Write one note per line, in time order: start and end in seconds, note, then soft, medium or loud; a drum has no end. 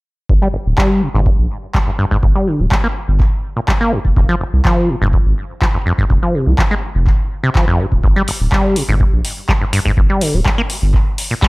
0.29 0.37 G1 medium
0.29 0.34 G2 medium
0.29 kick loud
0.42 0.48 G3 medium
0.54 0.58 G1 medium
0.66 0.73 D1 medium
0.78 1.03 G3 loud
0.78 kick loud
0.78 clap loud
1.02 1.09 C3 loud
1.15 1.29 G1 medium
1.15 1.21 G#2 loud
1.26 1.30 G2 medium
1.26 kick loud
1.39 1.46 A#1 medium
1.75 1.79 G3 loud
1.75 kick loud
1.75 clap loud
1.87 1.91 G2 medium
1.99 2.06 G2 loud
2.11 2.18 G#2 loud
2.11 kick medium
2.23 2.31 G1 medium
2.23 2.27 G2 medium
2.23 kick loud
2.36 2.49 G3 medium
2.47 2.61 D3 medium
2.60 2.67 D1 medium
2.60 2.66 G3 medium
2.71 2.75 G3 loud
2.71 kick loud
2.71 clap loud
2.84 2.88 A#3 loud
3.08 3.23 G1 medium
3.20 kick loud
3.20 clap soft
3.56 3.60 A#2 medium
3.68 3.72 G3 loud
3.68 kick loud
3.68 clap loud
3.81 3.94 A#3 loud
3.92 3.99 F2 loud
4.05 4.12 F1 medium
4.05 kick medium
4.16 4.24 F1 medium
4.16 4.21 F2 medium
4.16 kick loud
4.29 4.35 F3 loud
4.41 4.45 F1 medium
4.53 4.61 C2 medium
4.65 4.91 F3 medium
4.65 kick loud
4.65 clap loud
4.89 4.96 A#2 medium
5.02 5.16 F1 medium
5.02 5.08 G2 loud
5.13 5.17 F2 medium
5.13 kick loud
5.26 5.33 G#1 medium
5.62 5.66 F3 loud
5.62 kick loud
5.62 clap loud
5.74 5.78 F2 medium
5.86 5.93 F2 loud
5.98 6.05 G2 loud
5.98 kick medium
6.10 6.18 F1 medium
6.10 6.14 F2 medium
6.10 kick loud
6.23 6.36 F3 medium
6.34 6.48 C3 medium
6.47 6.54 C2 medium
6.47 6.53 F3 medium
6.58 6.63 F3 medium
6.58 kick loud
6.58 clap loud
6.71 6.75 G#3 loud
6.95 7.10 F1 loud
7.07 kick loud
7.07 clap soft
7.44 7.50 C3 loud
7.55 7.66 F3 medium
7.55 kick loud
7.55 clap loud
7.68 7.81 F2 medium
7.79 7.86 G2 medium
7.92 7.99 D#1 medium
7.92 kick medium
8.04 8.11 G1 medium
8.04 8.08 G2 medium
8.04 kick loud
8.16 8.23 G3 loud
8.28 8.32 G1 medium
8.28 open hi-hat loud
8.40 8.48 D1 medium
8.52 8.78 G3 medium
8.52 kick loud
8.52 clap loud
8.76 8.83 C3 loud
8.76 open hi-hat loud
8.89 9.03 G1 loud
8.89 8.95 G#2 loud
9.00 9.05 G2 medium
9.00 kick loud
9.13 9.20 A#1 medium
9.25 open hi-hat loud
9.49 9.53 G3 loud
9.49 kick loud
9.49 clap loud
9.61 9.65 G2 medium
9.73 9.80 G2 loud
9.73 open hi-hat loud
9.85 9.92 G#2 loud
9.85 kick medium
9.97 10.05 G1 medium
9.97 10.01 G2 medium
9.97 kick loud
10.10 10.23 G3 medium
10.21 10.35 D3 medium
10.21 open hi-hat loud
10.34 10.41 D1 medium
10.34 10.40 G3 medium
10.45 10.50 G3 medium
10.45 kick loud
10.45 clap loud
10.58 10.62 A#3 loud
10.70 open hi-hat loud
10.82 10.97 G1 loud
10.94 kick loud
10.94 clap soft
11.18 open hi-hat loud
11.31 11.35 A#2 medium
11.42 11.46 G3 loud
11.42 kick loud
11.42 clap loud